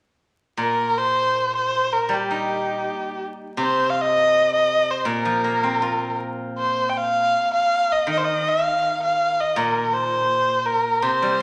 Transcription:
0.57 2.85 A#2 soft
0.57 0.99 A#4 medium
0.97 1.55 C5 medium
1.55 1.94 C5 medium
1.92 2.14 A#4 medium
2.09 4.32 G3 soft
2.09 3.23 G4 medium
2.31 3.78 D#4 soft
3.57 5.06 C3 soft
3.61 3.91 C5 medium
3.89 4.02 F5 medium
4.01 4.54 D#5 medium
4.54 4.92 D#5 medium
4.90 5.07 C5 medium
5.05 7.33 A#2 soft
5.05 6.18 A#4 medium
5.25 6.76 F3 soft
5.44 6.95 A#3 soft
5.63 7.15 C4 soft
5.82 7.34 F4 soft
6.58 6.90 C5 medium
6.89 6.99 G5 medium
6.97 7.52 F5 medium
7.53 7.93 F5 medium
7.92 8.10 D#5 medium
8.07 10.30 D#3 soft
8.11 8.19 D#5 medium
8.17 8.26 C5 medium
8.24 8.50 D#5 medium
8.49 9.02 F5 medium
9.03 9.42 F5 medium
9.40 9.60 D#5 medium
9.56 11.03 A#2 medium
9.56 9.95 A#4 medium
9.93 10.67 C5 medium
10.66 11.04 A#4 medium
11.02 11.42 C3 soft
11.02 11.42 C5 medium
11.22 11.42 G3 soft

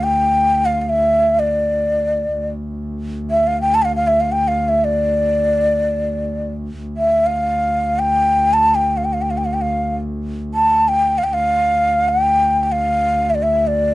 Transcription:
0.00 2.33 D2 medium
0.00 0.67 G5 medium
0.65 0.81 F5 medium
0.81 0.91 F5 soft
0.89 1.41 E5 medium
1.39 2.48 D5 medium
2.33 6.79 D2 medium
3.31 3.48 E5 medium
3.47 3.61 F5 medium
3.61 3.76 G5 medium
3.75 3.84 A5 medium
3.82 3.95 F5 medium
3.82 3.85 G5 medium
3.96 4.09 F5 medium
4.07 4.22 E5 medium
4.20 4.33 F5 medium
4.32 4.49 G5 medium
4.48 4.70 F5 medium
4.69 4.86 E5 medium
4.84 6.49 D5 medium
6.80 11.27 D2 medium
6.97 7.28 E5 medium
7.26 8.01 F5 medium
7.99 8.55 G5 medium
8.53 8.76 A5 medium
8.75 8.99 G5 medium
8.97 9.06 F5 medium
9.05 9.15 G5 medium
9.13 9.23 F5 medium
9.22 9.32 G5 medium
9.31 9.39 F5 medium
9.38 9.47 G5 medium
9.45 9.55 F5 medium
9.54 9.63 G5 medium
9.62 9.97 F5 medium
10.54 10.90 A5 medium
10.88 11.20 G5 medium
11.18 11.25 F5 medium
11.24 13.94 D2 medium
11.24 11.35 G5 medium
11.34 12.10 F5 medium
12.09 12.63 G5 medium
12.63 12.73 G5 medium
12.72 13.31 F5 medium
13.30 13.36 E5 medium
13.35 13.44 D5 medium
13.43 13.69 E5 medium
13.67 13.94 D5 medium

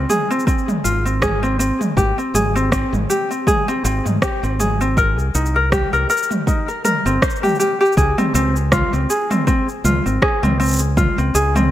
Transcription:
0.09 0.28 G#4 medium
0.09 mid tom medium
0.09 shaker medium
0.31 0.45 C4 medium
0.31 shaker soft
0.39 shaker soft
0.47 0.67 C4 medium
0.47 kick loud
0.47 shaker soft
0.58 shaker soft
0.68 mid tom medium
0.68 shaker soft
0.84 1.70 G#1 medium
0.84 1.03 F4 medium
0.84 shaker medium
1.05 1.21 C4 medium
1.05 shaker soft
1.22 1.41 G#4 medium
1.22 kick medium
1.22 cross-stick medium
1.22 mid tom medium
1.22 shaker soft
1.43 1.58 C4 medium
1.43 shaker soft
1.59 1.79 C4 medium
1.59 shaker medium
1.81 mid tom medium
1.81 shaker soft
1.97 2.11 G#1 medium
1.97 2.16 G4 medium
1.97 kick medium
1.97 shaker soft
2.18 2.34 C4 medium
2.18 shaker soft
2.34 2.82 G#1 medium
2.34 2.54 G#4 medium
2.34 mid tom medium
2.34 shaker medium
2.56 2.70 C4 medium
2.56 shaker soft
2.72 2.92 C4 loud
2.72 kick medium
2.72 cross-stick medium
2.72 shaker soft
2.92 3.04 G#1 medium
2.92 mid tom medium
2.92 shaker soft
3.10 3.29 G4 medium
3.10 shaker medium
3.31 3.46 C4 medium
3.31 shaker soft
3.47 3.66 G#4 medium
3.47 kick loud
3.47 mid tom medium
3.47 shaker soft
3.68 3.83 C4 loud
3.68 shaker soft
3.84 3.99 G#1 medium
3.84 4.05 C4 medium
3.84 shaker medium
4.05 4.17 G#2 medium
4.05 mid tom medium
4.05 shaker soft
4.22 4.41 G4 medium
4.22 kick loud
4.22 cross-stick loud
4.22 shaker soft
4.43 5.18 G#1 medium
4.43 4.59 C4 medium
4.43 shaker soft
4.60 4.79 G#4 medium
4.60 mid tom medium
4.60 shaker medium
4.81 4.96 C4 medium
4.81 shaker soft
4.97 5.17 A#4 medium
4.97 kick medium
4.97 shaker soft
5.18 5.29 C2 medium
5.18 shaker soft
5.34 5.83 C2 medium
5.34 5.54 D#4 medium
5.34 shaker medium
5.46 shaker soft
5.56 5.71 A#4 medium
5.72 5.91 G4 medium
5.72 kick loud
5.72 cross-stick medium
5.72 mid tom medium
5.72 shaker soft
5.93 6.04 C2 medium
5.93 6.08 A#4 medium
5.93 shaker soft
6.10 6.30 A#4 medium
6.10 shaker medium
6.17 shaker medium
6.23 shaker soft
6.31 mid tom medium
6.31 shaker soft
6.47 6.66 D#4 medium
6.47 kick loud
6.47 shaker soft
6.68 6.83 A#4 medium
6.68 shaker soft
6.85 7.05 A#4 medium
6.85 mid tom medium
6.85 shaker medium
7.05 7.17 G1 medium
7.05 7.21 C4 medium
7.05 shaker soft
7.22 7.41 C5 medium
7.22 kick medium
7.22 cross-stick medium
7.22 shaker soft
7.30 shaker soft
7.36 shaker soft
7.43 7.58 G4 medium
7.43 mid tom medium
7.43 shaker soft
7.46 shaker soft
7.48 shaker soft
7.50 shaker soft
7.52 shaker soft
7.54 shaker soft
7.56 shaker soft
7.58 7.78 G4 medium
7.58 shaker soft
7.60 shaker medium
7.81 7.95 G4 medium
7.81 shaker soft
7.85 shaker soft
7.92 shaker soft
7.97 8.12 C#2 medium
7.97 8.16 G#4 medium
7.97 kick medium
7.97 shaker soft
8.18 8.33 C4 loud
8.18 mid tom medium
8.18 shaker soft
8.34 8.83 C#2 medium
8.34 8.55 C4 loud
8.34 shaker medium
8.56 shaker soft
8.72 8.91 F4 medium
8.72 kick loud
8.72 cross-stick medium
8.72 mid tom medium
8.72 shaker soft
8.93 9.04 C#2 medium
8.93 9.09 C4 medium
8.93 shaker soft
9.10 9.29 G#4 medium
9.10 shaker medium
9.31 9.46 C4 medium
9.31 mid tom medium
9.31 shaker soft
9.47 9.67 C4 medium
9.47 kick loud
9.47 shaker soft
9.69 shaker soft
9.84 9.99 C#2 medium
9.84 10.04 F4 medium
9.84 mid tom medium
9.84 shaker medium
10.06 10.17 G#1 medium
10.06 10.21 C4 medium
10.06 shaker soft
10.22 10.41 G#4 medium
10.22 kick medium
10.22 cross-stick medium
10.43 11.08 C#2 medium
10.43 10.58 C4 medium
10.43 mid tom medium
10.43 shaker soft
10.60 10.80 C4 medium
10.60 shaker soft
10.63 shaker soft
10.66 shaker soft
10.68 shaker soft
10.71 shaker medium
10.73 shaker medium
10.76 shaker medium
10.79 shaker medium
10.81 shaker soft
10.97 11.16 F4 medium
10.97 kick medium
10.97 mid tom medium
10.97 shaker soft
11.18 11.29 C#2 medium
11.18 11.34 C4 medium
11.18 shaker soft
11.34 11.71 C#2 medium
11.34 11.54 G#4 medium
11.34 shaker medium
11.55 11.71 C4 medium
11.55 mid tom medium
11.55 shaker soft

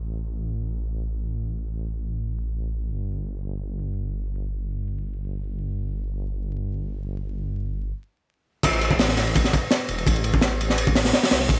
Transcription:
0.00 2.91 A1 medium
2.92 7.92 G1 medium
8.63 9.51 A1 loud
8.63 kick loud
8.63 crash medium
8.63 ride medium
8.73 ride soft
8.81 ride medium
8.91 kick medium
8.99 snare loud
8.99 open hi-hat medium
9.08 snare medium
9.17 snare soft
9.17 ride medium
9.27 ride soft
9.35 kick loud
9.35 ride medium
9.44 snare medium
9.53 kick loud
9.53 ride medium
9.71 snare loud
9.71 ride medium
9.88 10.05 E1 loud
9.88 ride medium
9.98 ride soft
10.07 10.32 A1 loud
10.07 kick loud
10.07 ride medium
10.16 ride soft
10.24 ride medium
10.34 11.12 A1 medium
10.34 kick loud
10.41 snare loud
10.41 ride medium
10.61 ride medium
10.70 snare soft
10.78 ride medium
10.87 kick loud
10.95 snare loud
10.95 open hi-hat medium
11.05 snare loud
11.05 open hi-hat medium
11.13 snare loud
11.13 open hi-hat medium
11.23 snare loud
11.23 open hi-hat medium
11.31 11.48 C2 medium
11.31 snare loud
11.31 ride medium
11.40 snare soft
11.49 11.60 A1 loud
11.49 kick loud
11.49 ride medium

